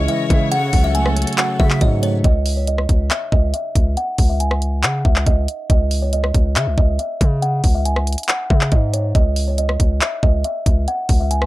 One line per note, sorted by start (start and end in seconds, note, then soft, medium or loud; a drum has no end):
0.00 0.52 C#3 medium
0.00 0.09 E3 medium
0.00 0.29 G#3 medium
0.00 0.50 G#3 medium
0.00 0.52 C#4 medium
0.00 2.21 C#4 medium
0.00 0.48 E4 medium
0.00 0.52 E4 medium
0.00 2.21 C#5 medium
0.08 0.52 E3 loud
0.08 0.29 D#5 medium
0.08 0.49 E5 medium
0.08 closed hi-hat medium
0.30 0.72 C#3 loud
0.30 0.52 G#3 medium
0.30 0.51 E5 medium
0.30 kick loud
0.30 closed hi-hat medium
0.52 1.59 C#3 medium
0.52 2.23 F#4 medium
0.52 2.23 A4 medium
0.52 0.82 F#5 loud
0.52 0.92 F#5 loud
0.52 closed hi-hat medium
0.73 1.25 C#2 loud
0.73 1.80 F#3 medium
0.73 kick medium
0.73 open hi-hat medium
0.84 0.94 E5 medium
0.95 2.01 A3 medium
0.95 1.35 G#5 medium
0.95 closed hi-hat medium
1.06 cross-stick loud
1.16 2.24 C#4 medium
1.16 closed hi-hat medium
1.22 closed hi-hat medium
1.27 closed hi-hat medium
1.33 closed hi-hat medium
1.38 2.24 F#4 loud
1.38 1.58 F#5 medium
1.38 clap loud
1.38 closed hi-hat medium
1.60 1.80 C#3 loud
1.60 2.25 C#3 medium
1.60 1.80 E5 medium
1.60 1.79 E5 medium
1.60 kick loud
1.70 clap medium
1.81 2.23 G#2 loud
1.81 2.24 F#3 medium
1.81 2.01 D#5 medium
1.81 kick medium
1.81 closed hi-hat medium
2.02 2.24 A3 medium
2.02 2.22 C#5 medium
2.02 closed hi-hat medium
2.24 2.87 C#2 loud
2.24 2.55 D#5 loud
2.24 kick loud
2.24 closed hi-hat medium
2.46 open hi-hat medium
2.57 2.67 C#5 medium
2.67 3.08 D#5 medium
2.67 closed hi-hat medium
2.78 cross-stick medium
2.89 3.10 C#2 loud
2.89 kick medium
2.89 closed hi-hat medium
3.11 3.30 E5 medium
3.11 clap loud
3.11 closed hi-hat medium
3.32 3.53 C#2 loud
3.32 3.52 D#5 medium
3.32 kick loud
3.54 3.94 E5 medium
3.54 closed hi-hat medium
3.75 3.96 C#2 loud
3.75 kick medium
3.75 closed hi-hat medium
3.97 4.28 F#5 loud
3.97 closed hi-hat medium
4.18 4.85 C#2 loud
4.18 kick medium
4.18 open hi-hat medium
4.29 4.39 E5 medium
4.40 4.81 G#5 medium
4.40 closed hi-hat medium
4.51 cross-stick loud
4.62 closed hi-hat medium
4.83 5.04 C#3 loud
4.83 5.03 F#5 medium
4.83 clap loud
4.83 closed hi-hat medium
5.05 5.26 C#2 loud
5.05 5.25 E5 medium
5.05 kick loud
5.16 clap medium
5.26 5.47 C#2 loud
5.26 5.67 D#5 medium
5.26 kick medium
5.26 closed hi-hat medium
5.48 closed hi-hat medium
5.70 6.32 C#2 loud
5.70 6.00 D#5 medium
5.70 kick loud
5.70 closed hi-hat medium
5.91 open hi-hat medium
6.02 6.12 C#5 medium
6.13 6.54 D#5 medium
6.13 closed hi-hat medium
6.24 cross-stick medium
6.34 6.58 C#2 loud
6.34 kick medium
6.34 closed hi-hat medium
6.56 6.68 C#3 loud
6.56 6.76 E5 medium
6.56 clap loud
6.56 closed hi-hat medium
6.67 6.77 C#2 loud
6.78 6.98 C#2 loud
6.78 6.97 D#5 medium
6.78 kick loud
6.99 7.40 E5 medium
6.99 closed hi-hat medium
7.21 7.62 C#3 loud
7.21 kick medium
7.21 closed hi-hat medium
7.42 7.73 F#5 loud
7.42 closed hi-hat medium
7.64 8.16 C#2 loud
7.64 kick medium
7.64 open hi-hat medium
7.75 7.85 E5 medium
7.85 8.26 G#5 medium
7.85 closed hi-hat medium
7.96 cross-stick loud
8.07 closed hi-hat medium
8.13 closed hi-hat medium
8.18 closed hi-hat medium
8.23 closed hi-hat medium
8.28 8.48 F#5 medium
8.28 clap loud
8.28 closed hi-hat medium
8.50 8.71 C#3 loud
8.50 8.70 E5 medium
8.50 kick loud
8.61 clap medium
8.72 9.13 G#2 loud
8.72 8.92 D#5 medium
8.72 kick medium
8.72 closed hi-hat medium
8.93 9.13 C#5 medium
8.93 closed hi-hat medium
9.15 9.77 C#2 loud
9.15 9.46 D#5 loud
9.15 kick loud
9.15 closed hi-hat medium
9.36 open hi-hat medium
9.48 9.57 C#5 medium
9.58 9.99 D#5 medium
9.58 closed hi-hat medium
9.69 cross-stick loud
9.80 10.00 C#2 loud
9.80 kick medium
9.80 closed hi-hat medium
10.01 10.21 E5 medium
10.01 clap loud
10.01 closed hi-hat medium
10.23 10.44 C#2 loud
10.23 10.43 D#5 medium
10.23 kick loud
10.44 10.85 E5 medium
10.44 closed hi-hat medium
10.66 10.87 C#2 loud
10.66 kick medium
10.66 closed hi-hat medium
10.88 11.18 F#5 loud
10.88 closed hi-hat medium
11.09 11.46 C#2 loud
11.09 kick medium
11.09 open hi-hat medium
11.20 11.30 E5 medium
11.31 11.46 G#5 medium
11.31 closed hi-hat medium
11.42 cross-stick loud